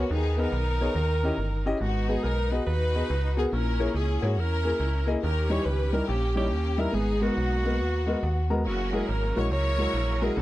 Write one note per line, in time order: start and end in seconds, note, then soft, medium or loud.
0.00 0.13 F#4 medium
0.10 0.47 D#2 loud
0.10 0.77 D#3 medium
0.10 0.92 B3 medium
0.10 0.40 D#4 medium
0.10 0.41 G#4 medium
0.10 0.38 G#4 medium
0.38 0.48 B3 medium
0.38 0.48 D#4 medium
0.38 1.64 D#4 medium
0.38 0.48 G#4 medium
0.38 1.67 A#4 loud
0.38 0.48 D#5 medium
0.42 1.68 A#4 medium
0.52 0.89 B1 loud
0.81 0.91 B3 medium
0.81 0.91 D#4 medium
0.81 0.91 G#4 medium
0.81 0.91 C#5 medium
0.95 1.32 D#2 medium
0.95 1.62 D#3 medium
1.23 1.33 C#4 medium
1.23 1.33 E4 medium
1.23 1.34 G4 medium
1.23 1.34 D#5 medium
1.38 1.74 G1 medium
1.66 1.76 C#4 medium
1.66 1.76 E4 medium
1.66 1.76 G4 medium
1.66 1.76 D#5 loud
1.77 2.10 F#4 medium
1.77 1.82 G#4 medium
1.81 2.17 G#1 medium
1.81 2.48 G#2 medium
1.81 2.63 B3 medium
1.81 2.63 D#4 medium
1.81 2.08 F#4 medium
2.08 2.18 B3 medium
2.08 2.19 F#4 medium
2.08 2.25 G#4 medium
2.08 2.19 G#4 medium
2.08 2.25 G#4 medium
2.08 2.19 D#5 medium
2.23 2.60 B1 medium
2.23 2.53 A#4 medium
2.51 2.61 B3 medium
2.51 2.62 F#4 medium
2.51 2.62 G#4 medium
2.51 2.66 B4 medium
2.51 2.62 D#5 medium
2.66 3.03 D#2 medium
2.66 3.48 D#4 medium
2.66 3.48 F#4 medium
2.66 3.33 B4 loud
2.95 3.04 B3 medium
2.95 3.04 F#4 medium
2.95 3.05 G#4 soft
2.95 3.05 D#5 medium
3.10 3.46 C#2 medium
3.37 3.46 B3 medium
3.37 3.46 F#4 medium
3.37 3.47 G#4 medium
3.37 3.55 G#4 medium
3.37 3.45 G#4 medium
3.37 3.47 A#4 medium
3.52 3.89 A#1 loud
3.52 4.19 A#2 medium
3.52 4.33 C#4 medium
3.52 4.33 E4 medium
3.52 3.92 A#4 medium
3.52 3.96 A#4 medium
3.79 3.89 A#3 medium
3.79 3.89 E4 medium
3.79 3.89 G#4 medium
3.79 3.90 C#5 medium
3.95 4.18 C#2 medium
3.95 4.23 G#4 medium
3.95 4.27 G#4 medium
4.22 4.38 G#2 medium
4.22 4.32 A#3 medium
4.22 4.32 E4 medium
4.22 4.37 F#4 medium
4.22 4.41 F#4 medium
4.22 4.32 G#4 medium
4.22 4.32 C#5 medium
4.37 4.73 E2 medium
4.37 5.19 C#4 medium
4.37 5.19 E4 medium
4.37 5.08 A#4 medium
4.37 5.09 A#4 loud
4.65 4.75 A#3 medium
4.65 4.75 E4 medium
4.65 4.75 G#4 medium
4.65 4.75 A#4 medium
4.80 5.16 C#2 medium
5.07 5.17 A#3 medium
5.07 5.17 E4 medium
5.07 5.17 G#4 medium
5.07 5.17 D#5 medium
5.22 5.60 D#2 medium
5.22 5.90 D#3 medium
5.22 6.04 C#4 medium
5.22 6.04 G4 medium
5.22 5.49 A#4 medium
5.22 5.54 A#4 medium
5.50 5.60 G3 medium
5.50 5.60 D#4 medium
5.50 5.60 E4 medium
5.50 5.65 C#5 medium
5.50 5.60 C#5 medium
5.50 5.67 C#5 medium
5.64 6.02 C#2 medium
5.64 5.93 B4 medium
5.93 6.03 G3 medium
5.93 6.03 D#4 medium
5.93 6.03 E4 medium
5.93 6.08 A#4 medium
5.93 6.03 A#4 medium
5.93 6.09 A#4 medium
6.08 6.53 A#1 loud
6.08 6.35 A#3 medium
6.08 6.36 C#4 medium
6.08 6.36 G4 medium
6.36 6.45 G3 medium
6.36 6.90 A#3 medium
6.36 6.90 C#4 medium
6.36 6.46 D#4 medium
6.36 6.46 E4 medium
6.36 6.82 G4 medium
6.36 6.77 G4 medium
6.36 6.46 C#5 medium
6.51 6.87 D#2 medium
6.78 6.88 G3 medium
6.78 6.88 D#4 medium
6.78 6.88 E4 medium
6.78 6.93 A#4 medium
6.78 6.96 A#4 medium
6.78 6.88 E5 medium
6.92 7.30 G#1 medium
6.92 7.60 G#2 medium
6.92 7.19 B3 medium
6.92 7.75 D#4 medium
6.92 7.21 G#4 medium
6.92 7.24 G#4 medium
7.20 7.31 G#3 medium
7.20 8.46 A#3 medium
7.20 8.45 B3 medium
7.20 7.31 B3 medium
7.20 8.50 F#4 medium
7.20 7.32 F#4 medium
7.20 8.51 F#4 loud
7.20 7.32 A#4 medium
7.37 7.81 B1 medium
7.65 7.74 G#3 medium
7.65 7.74 B3 medium
7.65 7.74 F#4 medium
7.65 7.75 A#4 medium
7.80 8.16 D#2 medium
8.07 8.17 G#3 medium
8.07 8.17 B3 medium
8.07 8.17 F#4 medium
8.07 8.17 A#4 medium
8.07 8.21 D#5 medium
8.22 8.67 D#2 medium
8.22 8.49 F#5 medium
8.50 8.60 G#3 medium
8.50 8.60 B3 medium
8.50 8.60 F#4 medium
8.50 8.60 A#4 medium
8.50 8.64 A#5 medium
8.65 9.02 F#1 medium
8.65 10.33 F#3 medium
8.65 9.47 A#3 medium
8.65 10.33 A#3 medium
8.65 9.47 C#4 medium
8.65 10.33 E4 medium
8.65 8.95 F#4 medium
8.65 8.92 F#4 medium
8.65 10.33 G#4 medium
8.93 9.02 G#3 medium
8.93 9.03 E4 medium
8.93 9.03 F#4 medium
8.93 9.11 G#4 medium
8.93 9.08 G#4 medium
8.93 9.03 A#4 medium
9.07 9.32 G#1 loud
9.07 9.36 A#4 medium
9.07 9.40 A#4 medium
9.36 9.49 A#1 medium
9.36 9.46 G#3 medium
9.36 9.46 E4 medium
9.36 9.46 F#4 medium
9.36 9.46 A#4 medium
9.36 9.49 C#5 medium
9.36 9.52 C#5 medium
9.50 9.87 C#2 medium
9.50 10.32 E4 medium
9.50 10.32 A#4 medium
9.50 10.18 C#5 loud
9.50 10.25 C#5 loud
9.78 9.88 G#3 medium
9.78 9.88 E4 medium
9.78 9.88 F#4 medium
9.78 9.88 A#4 medium
9.94 10.30 A#1 medium
10.20 10.31 G#3 medium
10.20 10.31 E4 medium
10.20 10.31 F#4 medium
10.20 10.34 G#4 medium
10.20 10.40 G#4 medium
10.20 10.31 A#4 medium
10.35 10.42 B1 loud
10.35 10.42 B2 medium
10.35 10.42 D#3 medium
10.35 10.42 A3 medium
10.35 10.42 C#4 medium
10.35 10.42 D#4 medium
10.35 10.42 A4 medium